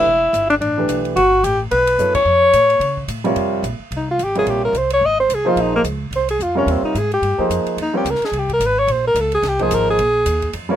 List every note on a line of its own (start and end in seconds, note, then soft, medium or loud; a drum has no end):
0.00 0.46 E4 loud
0.05 0.32 E1 medium
0.33 0.60 G1 medium
0.33 hi-hat pedal medium
0.33 ride medium
0.50 0.55 D4 medium
0.50 ride soft
0.61 0.87 A1 medium
0.61 1.02 D4 medium
0.61 ride medium
0.77 1.14 E3 medium
0.77 1.14 A3 medium
0.77 1.14 D4 medium
0.77 1.15 G4 medium
0.77 1.15 B4 medium
0.88 1.15 B1 medium
0.88 hi-hat pedal medium
0.88 ride medium
1.05 ride soft
1.16 1.43 G1 medium
1.16 1.46 F#4 loud
1.16 ride medium
1.43 1.70 A1 medium
1.43 1.60 G4 medium
1.43 hi-hat pedal medium
1.43 ride medium
1.71 1.98 B1 medium
1.71 2.12 B4 medium
1.71 ride medium
1.87 ride medium
1.98 2.25 F#2 medium
1.98 2.13 F#3 medium
1.98 2.13 B3 soft
1.98 2.13 E4 soft
1.98 2.14 A4 medium
1.98 2.14 C#5 medium
1.98 hi-hat pedal medium
2.15 3.05 C#5 loud
2.15 kick medium
2.15 crash medium
2.25 2.52 F2 medium
2.53 2.79 A2 medium
2.53 hi-hat pedal medium
2.53 ride medium
2.70 ride soft
2.80 3.07 C#3 medium
2.80 ride medium
2.97 kick soft
3.08 3.35 A2 medium
3.08 hi-hat pedal soft
3.08 ride medium
3.24 3.62 C3 medium
3.24 3.61 G3 medium
3.24 3.62 F4 medium
3.24 3.62 A#4 medium
3.24 3.62 C#5 medium
3.24 ride soft
3.36 3.62 F2 medium
3.36 ride medium
3.63 3.78 A#1 medium
3.63 hi-hat pedal medium
3.63 ride medium
3.79 muted upright bass stroke soft
3.91 4.18 C2 medium
3.91 ride medium
3.97 4.09 D#4 medium
4.11 4.25 F4 medium
4.19 4.45 G#1 medium
4.19 hi-hat pedal medium
4.19 ride medium
4.24 4.38 G4 medium
4.35 4.72 C3 medium
4.35 4.72 G3 medium
4.35 4.73 F4 medium
4.35 4.51 G#4 medium
4.35 4.73 A#4 medium
4.35 4.73 C#5 medium
4.35 ride soft
4.46 4.72 A#1 medium
4.46 4.64 G4 medium
4.46 ride medium
4.65 4.79 A#4 medium
4.73 5.00 C2 medium
4.73 hi-hat pedal medium
4.73 ride medium
4.78 4.92 C5 medium
4.90 5.07 C#5 medium
4.90 ride medium
5.01 5.28 G#1 medium
5.05 5.19 D#5 medium
5.20 5.36 C5 medium
5.29 5.55 C2 medium
5.29 hi-hat pedal medium
5.29 ride medium
5.34 5.50 G#4 medium
5.45 5.82 F3 medium
5.45 5.82 A#3 medium
5.45 5.82 D#4 medium
5.45 5.62 F4 medium
5.45 5.83 G#4 medium
5.45 5.83 C5 medium
5.56 5.83 A#1 medium
5.56 ride medium
5.60 5.75 D#4 medium
5.76 5.82 A#3 medium
5.84 6.10 C#2 medium
5.84 hi-hat pedal medium
5.84 ride medium
6.11 6.38 C2 medium
6.11 ride medium
6.16 6.29 C5 medium
6.29 6.44 G#4 medium
6.29 ride medium
6.39 6.66 F2 medium
6.39 6.57 F4 medium
6.39 hi-hat pedal medium
6.55 6.93 C3 medium
6.55 6.92 G3 medium
6.55 6.72 C#4 medium
6.55 6.93 F4 medium
6.55 6.93 A#4 medium
6.55 6.93 C#5 medium
6.66 6.82 D#2 medium
6.66 ride medium
6.71 6.84 C4 medium
6.82 7.00 D#4 medium
6.82 muted upright bass stroke soft
6.95 7.22 G#2 medium
6.95 7.13 G#4 medium
6.95 hi-hat pedal medium
6.95 ride medium
7.12 7.49 G4 medium
7.12 ride soft
7.22 7.37 G2 medium
7.22 ride medium
7.38 7.75 F3 medium
7.38 7.75 A#3 medium
7.38 7.76 D#4 medium
7.38 7.76 G#4 medium
7.38 7.76 C5 medium
7.38 muted upright bass stroke soft
7.38 kick soft
7.50 7.65 F2 medium
7.50 hi-hat pedal medium
7.50 ride medium
7.66 muted upright bass stroke soft
7.66 ride soft
7.77 8.04 D#2 medium
7.77 ride medium
7.82 7.95 D#4 medium
7.94 8.04 G3 medium
7.94 8.04 C4 medium
7.94 8.04 F4 medium
7.94 8.11 G4 medium
7.94 8.05 A#4 medium
7.94 8.05 C#5 medium
8.05 8.20 C#2 medium
8.05 hi-hat pedal medium
8.05 ride medium
8.10 8.26 A#4 medium
8.15 snare soft
8.20 muted upright bass stroke soft
8.20 ride soft
8.24 8.40 G#4 medium
8.24 snare soft
8.32 8.59 C2 medium
8.32 ride medium
8.38 8.52 G4 medium
8.49 8.68 A#4 medium
8.49 kick medium
8.49 ride soft
8.59 8.87 G#1 medium
8.59 hi-hat pedal medium
8.59 ride medium
8.66 8.80 B4 medium
8.79 8.93 C#5 medium
8.87 9.14 A#1 medium
8.87 ride medium
8.92 9.06 C5 medium
9.07 9.22 A#4 loud
9.15 9.42 C#2 medium
9.15 hi-hat pedal medium
9.15 ride medium
9.20 9.34 A4 medium
9.32 9.50 G#4 loud
9.32 ride soft
9.42 9.70 C2 medium
9.42 snare soft
9.42 ride medium
9.48 9.64 G4 medium
9.59 9.96 F3 medium
9.59 9.96 A#3 medium
9.59 9.96 D#4 medium
9.59 9.97 G#4 medium
9.59 9.76 G#4 loud
9.59 9.97 C5 medium
9.59 kick medium
9.59 ride soft
9.70 9.97 G#1 medium
9.70 9.89 A#4 medium
9.70 hi-hat pedal medium
9.70 ride medium
9.90 10.51 G#4 loud
9.99 10.25 A#1 medium
9.99 ride medium
10.26 10.52 D#2 medium
10.26 hi-hat pedal medium
10.26 ride medium
10.42 kick medium
10.42 ride soft
10.53 10.76 F2 medium
10.53 ride medium
10.69 10.76 C3 medium
10.69 10.76 G3 medium
10.69 10.76 F4 medium
10.69 10.76 A#4 medium
10.69 10.76 C#5 medium